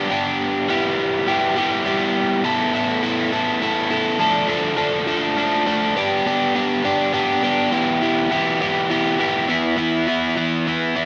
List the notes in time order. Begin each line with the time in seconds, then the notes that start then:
Already playing: G4
0.10 B3 D4 G4
0.68 G3 B3 E4 G4
1.27 G3 B3 E4 G4
1.56 G3 B3 E4 G4
1.85 G3 B3 E4 G4
2.44 B3 E4 A4
2.74 B3 E4 A4
3.03 B3 E4 A4
3.32 B3 E4 A4
3.61 B3 E4 A4
3.90 B3 E4 A4
4.19 F3 A3 D4 A4
4.47 F3 A3 D4 A4
4.76 F3 A3 D4 A4
5.06 F3 A3 D4 A4
5.37 F3 A3 D4 A4
5.66 F3 A3 D4 A4
5.96 B3 D4 G4
6.26 B3 D4 G4
6.55 B3 D4 G4
6.84 B3 D4 G4
7.13 B3 D4 G4
7.43 B3 D4 G4
7.72 E3 B3 E4 G4
8.01 E3 B3 E4 G4
8.30 E3 B3 E4 G4
8.60 E3 B3 E4 G4
8.90 E3 B3 E4 G4
9.19 E3 B3 E4 G4
9.48 E3 B3 E4
9.77 E3 B3 E4
10.07 E3 B3 E4
10.37 E3 B3 E4
10.67 E3 B3 E4
10.95 E3 B3 E4